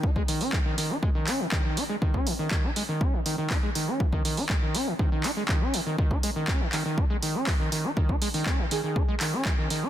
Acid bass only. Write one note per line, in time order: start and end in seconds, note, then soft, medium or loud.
0.04 0.10 D#4 medium
0.16 0.23 G#3 medium
0.28 0.42 D#3 medium
0.41 0.55 C#4 loud
0.53 0.60 D#3 loud
0.66 0.76 D#3 medium
0.78 0.92 D#3 medium
0.90 0.97 D#4 medium
1.03 1.10 G#3 medium
1.15 1.29 D#3 medium
1.27 1.41 C#4 loud
1.40 1.47 D#3 loud
1.52 1.63 D#3 medium
1.65 1.79 D#3 medium
1.77 1.84 D#4 medium
1.89 1.96 G#3 medium
2.02 2.16 D#3 medium
2.14 2.28 C#4 medium
2.27 2.33 D#3 medium
2.39 2.49 D#3 medium
2.51 2.65 D#3 medium
2.64 2.71 D#4 medium
2.76 2.83 G#3 medium
2.89 3.02 D#3 medium
3.01 3.15 C#4 loud
3.13 3.20 D#3 loud
3.26 3.36 D#3 medium
3.38 3.52 D#3 medium
3.50 3.57 D#4 medium
3.63 3.70 G#3 medium
3.75 3.89 D#3 medium
3.88 4.02 C#4 loud
4.00 4.07 D#3 loud
4.13 4.23 D#3 medium
4.25 4.39 D#3 medium
4.37 4.44 D#4 medium
4.50 4.57 G#3 medium
4.62 4.76 D#3 medium
4.75 4.89 C#4 loud
4.87 4.94 D#3 loud
4.99 5.10 D#3 medium
5.12 5.26 D#3 medium
5.24 5.31 D#4 medium
5.37 5.43 G#3 medium
5.49 5.63 D#3 medium
5.61 5.75 C#4 loud
5.74 5.81 D#3 loud
5.86 5.96 D#3 medium
6.11 6.18 D#4 medium
6.23 6.30 G#3 medium
6.36 6.50 D#3 medium
6.48 6.62 C#4 loud
6.61 6.67 D#3 loud
6.73 6.83 D#3 medium
6.85 6.99 D#3 medium
6.98 7.05 D#4 medium
7.10 7.17 G#3 medium
7.22 7.36 D#3 medium
7.35 7.49 C#4 loud
7.47 7.54 D#3 loud
7.60 7.70 D#3 medium
7.72 7.86 D#3 medium
7.84 7.91 D#4 medium
7.97 8.11 D#3 medium
8.09 8.16 D#4 medium
8.22 8.29 G#3 medium
8.34 8.48 D#3 medium
8.47 8.60 C#4 loud
8.59 8.66 D#3 loud
8.71 8.81 D#3 medium
8.84 8.98 D#3 medium
8.96 9.03 D#4 medium
9.08 9.15 G#3 medium
9.21 9.35 D#3 medium
9.33 9.47 C#4 loud
9.46 9.52 D#3 loud
9.58 9.68 D#3 medium
9.70 9.84 D#3 medium
9.83 9.89 D#4 medium